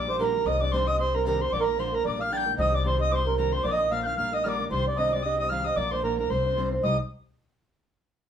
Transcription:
Already playing: A#1 D6
0.07 G3 A#3 D4 G4 C5
0.18 A#2 D3 G3 A#3 D4 G4 A#4 C6
0.24 A#5
0.34 G3 A#3 D4 G4
0.45 C2 C3 D#3 G3 C4 D4 G4 D#5 D#6
0.60 G3 C4 D4 G4 D5 D6
0.72 C3 D#3 G3 C4 D4 G4 C5 C6
0.87 G3 C4 D4 G4 D#5 D#6
0.98 G3 C4 D4 G4 C5 C6
1.13 G3 C4 D4 G4 A#4 A#5
1.25 C3 D#3 G3 C4 D4 G4 A#4 A#5
1.40 G3 C4 D4 G4 C5 C6
1.52 A#1 A#2 D3 F3 A#3 D4 A#4 D5 D6
1.60 A#4 A#5 C6
1.66 F3 A#3 D4 A#4
1.78 A#2 D3 F3 A#3 D4 A#4 C5 C6
1.92 F3 A#3 D4 A#4 A#5
2.04 A#1 G3 A#3 D4 A#4 D5 D6
2.19 G3 A#3 D4 A#4 F5 F6
2.31 A#2 D3 G3 A#3 D4 A#4 G5 A6
2.37 G6
2.46 G3 A#3 D4 A#4
2.57 C2 C3 D#3 G3 C4 D4 G4 D#5 D#6
2.71 G3 C4 D4 G4 D5 D6
2.83 C3 D#3 G3 C4 D4 G4 C5 C6
2.98 G3 C4 D4 G4 D#5 D#6
3.10 G3 C4 D4 G4 C5 D6
3.15 C6
3.25 G3 C4 D4 G4 A#4
3.36 C3 D#3 G3 C4 D4 G4 A#4 A#5
3.52 G3 C4 D4 G4 C5 C6
3.63 A#1 A#2 D3 F3 A#3 D4 A#4 D5 D6
3.71 D#5 D#6
3.78 F3 A#3 D4 A#4
3.90 A#2 D3 F3 A#3 D4 A#4 F5 F6
4.03 A#3 D4 A#4 F5 F6 G6
4.08 F3
4.16 A#1 G3 A#3 D4 A#4 F5 F6
4.32 G3 A#3 D4 A#4 D#5 D#6
4.43 A#2 D3 G3 A#3 D4 A#4 D5 F6
4.49 D6
4.58 G3 A#3 D4 A#4
4.70 C2 C3 D#3 G3 C4 D4 G4 C5 C6
4.85 G3 C4 D4 G4 D5
4.96 C3 D#3 G3 C4 D4 G4 D#5 D#6
5.09 D4 G4 D6 D#6
5.13 G3 C4 D5
5.22 G3 C4 D4 G4 D#5 D#6
5.38 G3 C4 D4 G4 D#5 D#6
5.49 C3 D#3 G3 C4 D4 G4 F5 F6
5.64 G3 C4 D4 G4 D#5 D#6
5.76 A#1 A#2 D3 F3 A#3 D4 A#4 D5 D6
5.91 F3 A#3 D4 A#4 C5 C6
6.02 A#2 D3 F3 A#3 D4 A#4 A#5
6.18 F3 A#3 D4 A#4 A#5
6.29 C2 G3 C4 D4 C5 C6
6.44 C4 D4 C5
6.56 C3 G3 C4 D4 C5
6.71 C4 D4 C5
6.83 C2 C3 G3 D#4 G4 C5 D#5 D#6

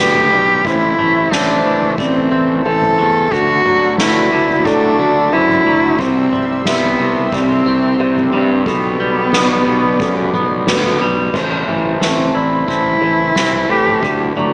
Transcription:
Already playing: B3 B4 D5 D6
0.00 D2 B2 G4 B4
0.15 floor tom, mid tom
0.32 B1 G3
0.64 A1 A2 E4 C5 E5 A5 E6, kick, floor tom
0.98 A1 A3, mid tom
1.31 A1 C4 D4 E5, snare, floor tom
1.65 A1 E3
1.82 floor tom
1.98 A1 A3 C4 D5, kick
2.32 A1 C4, floor tom
2.65 A1 E3 A4 C5
2.82 floor tom, mid tom
2.99 E2 A3
3.32 D2 D3 F#4 A4 D5 E6, kick, floor tom
3.65 D2 F#3, mid tom
3.98 D2 A3 E4 B4, snare, floor tom
4.32 D2 D3
4.48 floor tom
4.65 A2 F#3 D4 A4, kick
4.99 D2 A3, floor tom
5.33 F#2 D3 E4 C5
5.49 floor tom, mid tom
5.67 D2 F#3
5.98 C2 C3 C4 G4 C5 E5 C6, kick, floor tom
6.32 C2 G3, mid tom
6.65 C2 B3 E5, snare, floor tom
7.00 C2 C3
7.16 floor tom
7.32 C2 G3 C4 D5, kick
7.66 C2 C4, floor tom
7.99 C2 C3 C5
8.16 floor tom, mid tom
8.33 G2 G3 C4
8.66 B1 B2 B3 A4 D5 B5 D6, kick, floor tom
9.00 B1 G3
9.33 B1 B3 B4, snare, floor tom
9.67 B1 B2
9.83 floor tom
10.00 F#2 A4, kick
10.33 B1 B3, floor tom, mid tom
10.67 D2 B2 B4, snare, mid tom
10.84 floor tom, mid tom
11.01 B1 G3
11.34 A1 A2 E4 C5 A5 C6, kick, floor tom, crash
11.67 A1 E3 E5, mid tom
11.85 floor tom
12.01 A1 A3 C4 E5, snare
12.18 floor tom
12.35 A1 E4 D5
12.68 A1 C4 E4, kick
12.85 floor tom
13.02 A1 E3 C5
13.19 floor tom
13.36 C2 C4, snare
13.53 floor tom
13.69 A2 E3 G4
13.86 mid tom
14.03 D2 D3 A4 F#5 D6, kick, floor tom
14.36 D2 F#3 D5, mid tom

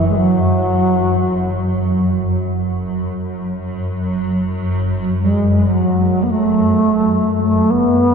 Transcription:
Already playing: F#2
0.09 G#3
0.16 F#3
5.21 G#3
5.57 G#3
5.67 F#3
6.23 B3
6.31 A3
7.44 A3
7.71 B3

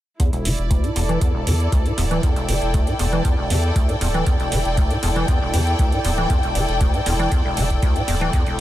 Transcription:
0.20 E2 E4, kick, closed hi-hat
0.33 E1, closed hi-hat
0.45 E1 E3 D5, open hi-hat
0.58 E1, closed hi-hat
0.70 D2, kick, closed hi-hat
0.84 A2 A4, closed hi-hat
0.96 E1 E2, open hi-hat
1.09 E3, closed hi-hat
1.21 E2, kick, closed hi-hat
1.35 E1
1.47 E2 E3, open hi-hat
1.60 closed hi-hat
1.72 D2, kick, closed hi-hat
1.86 A2, closed hi-hat
1.98 D1 E2, open hi-hat
2.08 E3 G5, closed hi-hat
2.23 E2, kick, closed hi-hat
2.36 E1, closed hi-hat
2.48 E1 E3, open hi-hat
2.62 E1, closed hi-hat
2.74 D2, kick, closed hi-hat
2.87 A2, closed hi-hat
2.99 E1 E2, open hi-hat
3.13 E3, closed hi-hat
3.25 E2, kick, closed hi-hat
3.38 E1
3.50 E2 E3, open hi-hat
3.76 D2, kick, closed hi-hat
3.89 A2, closed hi-hat
4.01 D1 E2, open hi-hat
4.14 E3, closed hi-hat
4.26 E2, kick, closed hi-hat
4.40 E1, closed hi-hat
4.52 E1 E3, open hi-hat
4.65 E1, closed hi-hat
4.77 D2, kick, closed hi-hat
4.90 A2, closed hi-hat
5.03 E1 E2, open hi-hat
5.16 E3, closed hi-hat
5.28 E2, kick, closed hi-hat
5.42 E1
5.53 E2 E3, open hi-hat
5.67 closed hi-hat
5.79 D2, kick, closed hi-hat
5.92 A2, closed hi-hat
6.04 D1 E2, open hi-hat
6.18 E3, closed hi-hat
6.30 E2, kick, closed hi-hat
6.43 E1, closed hi-hat
6.55 E1 E3, open hi-hat
6.68 E1, closed hi-hat
6.81 D2, kick, closed hi-hat
6.94 A2, closed hi-hat
7.06 E1 E2, open hi-hat
7.19 E3, closed hi-hat
7.32 E2, kick, closed hi-hat
7.45 E1
7.57 E1 E3, open hi-hat
7.70 kick, closed hi-hat
7.82 D2, kick, closed hi-hat
7.96 A2, closed hi-hat
8.08 D1 E2, open hi-hat
8.21 E3
8.33 E2, kick, closed hi-hat
8.47 E1, closed hi-hat

